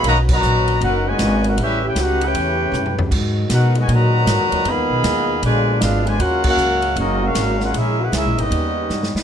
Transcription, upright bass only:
X:1
M:4/4
L:1/8
Q:"Swing" 1/4=156
K:Ebm
V:1 name="Upright bass" clef=bass
=B,,,2 ^A,,,2 ^F,,,2 _A,,,2 | =A,,,2 ^C,,2 =E,,2 G,,2 | A,,2 C,2 B,,2 (3A,, G,, E,, | (3F,, E,, C,, E,,2 B,,,2 A,,,2 |
E,,2 D,,2 G,,,2 A,,,2 | B,,,2 (3D,, B,,, A,,, E,,2 =G,, z |]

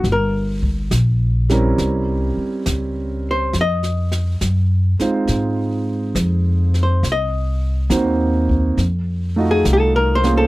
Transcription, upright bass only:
X:1
M:4/4
L:1/8
Q:"Swing" 1/4=69
K:Fphr
V:1 name="Upright bass" clef=bass
=G,,,2 B,,,2 C,, z D,,2 | F,,2 G,, z A,,2 F,,2 | C,,2 E,,2 F,,2 C,,2 |]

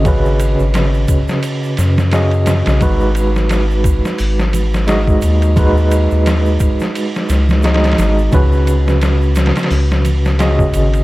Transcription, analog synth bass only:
X:1
M:4/4
L:1/16
Q:"Swing 16ths" 1/4=87
K:G#m
V:1 name="Analog synth bass" clef=bass
G,,,3 G,,,3 z4 F,,4- F,, B,,, | G,,,6- G,,, z G,,,6 D,,2- | D,,3 D,,3 z4 C,,4 G,,,2 | C,,6- C,, z C,,6 G,,,2 |]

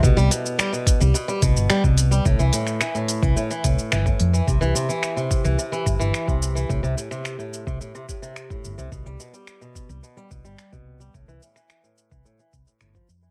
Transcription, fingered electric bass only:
X:1
M:4/4
L:1/16
Q:1/4=108
K:Gmix
V:1 name="Fingered electric bass" clef=bass
C,, C,, z4 z C,, z2 C,, G,,, z C,,2 z | C,, C,, z4 z C,, z2 C,, z G,,, z F,, z | C,, C,, z4 z C,, z2 G,,, G,,, z C,,2 z | C,, C,, z4 z C,, z6 G,,, C,, |
C,, C,, z4 z C,, z2 C,, G,,, z C,,2 z | C,, C,, z4 z C,, z2 C,, z G,,, z F,, z |]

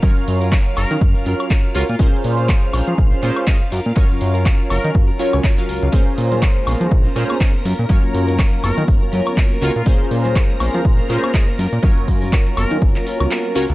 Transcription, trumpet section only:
X:1
M:4/4
L:1/16
Q:"Swing 16ths" 1/4=122
K:Gblyd
V:1 name="Trumpet section"
z6 B2 z6 F F | z16 | z6 B2 z8 | z16 |
z6 B2 z6 F F | z16 | z6 B2 z8 |]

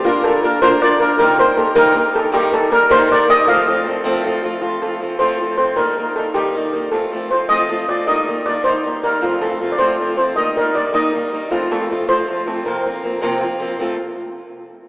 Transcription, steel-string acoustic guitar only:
X:1
M:6/8
L:1/8
Q:3/8=105
K:Fmix
V:1 name="Steel-string acoustic guitar"
[B,DFB] [B,DFB] [B,DFB] [B,DFB] [B,DFB] [B,DFB] | [C,G,B,EGB] [B,EGB] [B,EGB] [C,G,B,EGB] [B,EGB] [B,EGB] | [E,G,B,EB] [G,B,EB] [G,B,EB] [E,G,B,EB] [G,B,EB] [G,B,EB] | [F,A,CF] [F,A,CF] [F,A,CF] [F,A,CF] [F,A,CF] [F,A,CF] |
[F,A,CF] [F,A,CF] [F,A,CF] [F,A,CF] [F,A,CF] [F,A,CF] | [E,G,B,E] [E,G,B,E] [E,G,B,E] [E,G,B,E] [E,G,B,E] [E,G,B,E] | [F,A,CF] [F,A,CF] [F,A,CF] [F,A,CF] [F,A,CF] [F,A,CF] | [E,G,B,E] [E,G,B,E] [E,G,B,E] [E,G,B,E] [E,G,B,E] [E,G,B,E] |
[F,A,CF] [F,A,CF] [F,A,CF] [F,A,CF] [F,A,CF] [F,A,CF] | [E,G,B,E] [E,G,B,E] [E,G,B,E] [E,G,B,E] [E,G,B,E] [E,G,B,E] | [F,A,CF] [F,A,CF] [F,A,CF] [F,A,CF] [F,A,CF] [F,A,CF] | [F,,C,F,B,CF] [F,B,CF] [F,B,CF] [F,,C,F,B,CF] [F,B,CF] [F,B,CF] |
[F,A,CF] z4 z |]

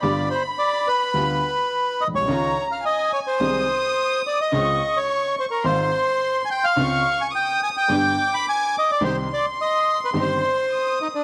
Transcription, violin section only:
X:1
M:4/4
L:1/8
Q:1/4=107
K:Cm
V:1 name="Violin section"
=b6- b z | b2 a2 e'4 | _d'4 c'4 | _d'2 e'2 =d'4 |
c'6 e'2 |]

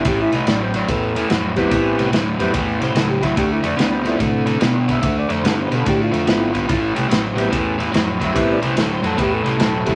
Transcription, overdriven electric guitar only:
X:1
M:4/4
L:1/8
Q:"Swing" 1/4=145
K:Am
V:1 name="Overdriven electric guitar" clef=bass
[A,,E,] [A,,E,] [A,,^F,] [A,,F,] [A,,E,] [A,,E,] [A,,F,] [A,,F,] | [A,,E,] [A,,E,] [A,,^F,] [A,,F,] [A,,E,] [A,,E,] [A,,F,] [A,,F,] | [D,A,] [D,A,] [D,B,] [D,B,] [D,A,] [D,A,] [D,B,] [D,B,] | [D,A,] [D,A,] [D,B,] [D,B,] [D,A,] [D,A,] [D,B,] [D,B,] |
[A,,E,] [A,,E,] [A,,^F,] [A,,F,] [A,,E,] [A,,E,] [A,,F,] [A,,F,] | [A,,E,] [A,,E,] [A,,^F,] [A,,F,] [A,,E,] [A,,E,] [A,,F,] [A,,F,] |]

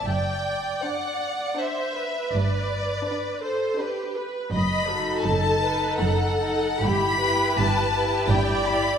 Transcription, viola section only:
X:1
M:3/4
L:1/8
Q:1/4=81
K:G
V:1 name="Viola section"
d4 c B- | B2 B A G B | ^d F A B A2 | G B3 d2 |]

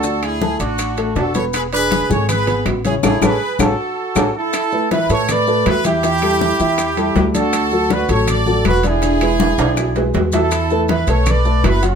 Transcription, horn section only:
X:1
M:4/4
L:1/8
Q:1/4=160
K:Emix
V:1 name="Horn section"
[FA] [EG]2 [DF]3 [FA] [Ac] | [GB] [GB]2 [Ac] [GB]2 z [EG] | [EG] [GB]2 [FA]4 [EA]- | [EA]2 [EB] [Ac] [Bd]2 [EB] [E=G]- |
[E=G]6- [EG] [FA]- | [FA]2 [FB] [Ac] [Ad]2 [FB] [EG]- | [EG]6 z [EA]- | [EA]2 [EB] [Ac] [Bd]2 [EB] [CF] |]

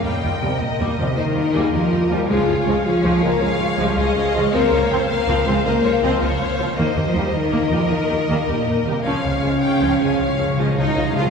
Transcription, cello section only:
X:1
M:12/8
L:1/16
Q:3/8=107
K:Dblyd
V:1 name="Cello section" clef=bass
B,,4 C,2 B,,4 C,2 E,6 F,4 G,2 | A,4 A,2 F,4 B,2 A,4 G,2 A,4 A,2 | B,4 C2 B,4 A,2 B,6 z6 | E,3 F, G,2 E,4 F,2 E,4 E,2 B,,4 C,2 |
D,16- D,2 E4 F2 |]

